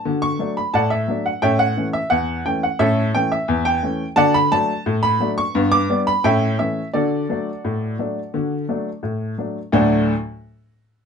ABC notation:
X:1
M:2/4
L:1/16
Q:1/4=87
K:D
V:1 name="Upright piano"
a c'2 b [dfa] e2 f | [ceg] f2 e f2 g f | [Ace]2 g e2 g3 | [dfa] b a3 b2 c'- |
c' d'2 b [ceg]2 e2 | [FAd]8- | [FAd]4 z4 | [D,,A,,F,A,DF]2 z6 |]
V:2 name="Upright piano"
[D,F]2 [F,A,D]2 A,,2 [F,A,D]2 | [A,,C]2 [E,A,C]2 E,,2 [E,A,C]2 | [A,,C]2 [E,A,C]2 E,,2 [E,A,C]2 | [D,F]2 [F,A,D]2 A,,2 [F,A,D]2 |
[G,,B,]2 [G,B,D]2 [A,,C]2 [E,A,C]2 | D,2 [F,A,D]2 A,,2 [F,A,D]2 | [D,F]2 [F,A,D]2 A,,2 [F,A,D]2 | z8 |]